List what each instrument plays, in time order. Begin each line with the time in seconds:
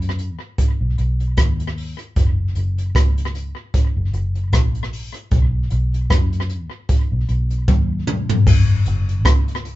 Already playing: fingered electric bass F#2
0.02 closed hi-hat
0.19 closed hi-hat
0.58 kick, closed hi-hat
0.81 fingered electric bass B1
0.98 fingered electric bass B1, closed hi-hat
1.20 closed hi-hat
1.37 fingered electric bass D#2, kick, cross-stick, closed hi-hat
1.60 closed hi-hat
1.77 open hi-hat
1.99 closed hi-hat
2.16 fingered electric bass F#1, kick, closed hi-hat
2.55 fingered electric bass F#1, closed hi-hat
2.78 closed hi-hat
2.95 fingered electric bass C#2, kick, cross-stick, closed hi-hat
3.18 closed hi-hat
3.35 closed hi-hat
3.74 kick, closed hi-hat
3.97 fingered electric bass F#1
4.13 fingered electric bass F#1, closed hi-hat
4.35 closed hi-hat
4.52 fingered electric bass A#1, kick, cross-stick, closed hi-hat
4.75 closed hi-hat
4.93 open hi-hat
5.14 closed hi-hat
5.31 fingered electric bass B1, kick, closed hi-hat
5.70 fingered electric bass B1, closed hi-hat
5.94 closed hi-hat
6.10 fingered electric bass F#2, kick, cross-stick, closed hi-hat
6.33 closed hi-hat
6.49 closed hi-hat
6.89 kick, closed hi-hat
7.12 fingered electric bass B1
7.29 fingered electric bass B1, closed hi-hat
7.50 closed hi-hat
7.68 fingered electric bass D#2, kick, high tom
8.07 mid tom
8.29 floor tom
8.47 fingered electric bass F#1, kick, crash
8.86 fingered electric bass F#1, closed hi-hat
9.09 closed hi-hat
9.25 fingered electric bass C#2, kick, cross-stick, closed hi-hat
9.48 closed hi-hat
9.65 closed hi-hat